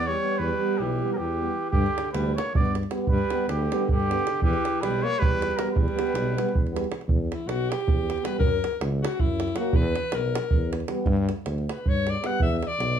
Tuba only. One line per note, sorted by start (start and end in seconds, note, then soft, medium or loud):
0.00 0.15 E2 medium
0.39 0.52 E2 loud
0.79 1.02 B1 loud
1.19 1.49 E2 medium
1.73 1.86 G2 loud
2.14 2.36 D2 loud
2.55 2.84 G2 medium
3.08 3.20 G2 loud
3.48 3.70 D2 loud
3.88 4.17 G2 medium
4.43 4.55 E2 loud
4.82 5.04 B1 loud
5.21 5.51 E2 medium
5.75 5.87 E2 loud
6.14 6.36 B1 loud
6.54 6.83 E2 medium
7.08 7.30 E2 loud
7.47 7.69 B1 loud
7.87 8.17 E2 medium
8.39 8.62 F#2 loud
8.81 9.03 C#2 loud
9.20 9.50 F#2 medium
9.74 9.96 E2 loud
10.13 10.35 B1 loud
10.53 10.82 E2 medium
11.06 11.28 G2 loud
11.46 11.68 D2 loud
11.86 12.15 G2 medium
12.40 12.62 E2 loud
12.79 12.99 B1 loud